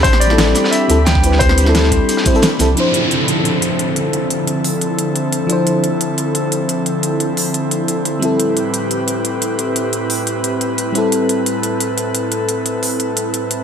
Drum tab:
HH |x-x-x-x-x-x-x-x-|x-x-x-x-x-xxx-x-|x-x-x-x-x-x-x-x-|x-x-x-o-x-x-x-x-|
SD |-o-ooooo----o--o|-o-ooo---o--o-o-|----------------|----------------|
BD |o------------o--|o-----o---o-----|----------------|----------------|

HH |x-x-x-x-x-x-x-x-|x-x-x-o-x-x-x-x-|x-x-x-x-x-x-x-x-|x-x-x-o-x-x-x-x-|
SD |----------------|----------------|----------------|----------------|
BD |----------------|----------------|----------------|----------------|

HH |x-x-x-x-x-x-x-x-|x-x-x-o-x-x-x-x-|
SD |----------------|----------------|
BD |----------------|----------------|